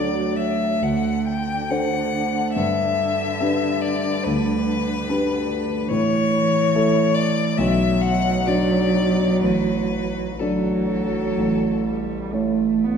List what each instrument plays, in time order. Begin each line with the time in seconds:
Already playing: grand piano D2 D4 F#4 A4, cello F#3, violin D5
0.36 violin E5
0.82 grand piano D2, cello D3, violin F#5
1.27 violin G5
1.70 grand piano D4 A4 C5, violin F#5
2.54 grand piano G2, violin E5
3.41 grand piano D4 G4 B4
3.82 violin D5
4.23 grand piano D2, violin B4
5.09 grand piano D4 G4 B4
5.91 grand piano A2, cello E3, violin C#5
6.75 grand piano A3 E4 A4
7.14 violin D5
7.57 grand piano B1, cello F#3, violin E5
8.02 violin F#5
8.47 grand piano F#3 D4 D5, violin D5
9.41 grand piano A1, violin B4
10.39 grand piano F#3 D4 D5, cello F#3, violin A4
11.37 grand piano A1
11.87 cello G3
12.33 grand piano A3 E4 C#5, cello A3
12.84 cello B3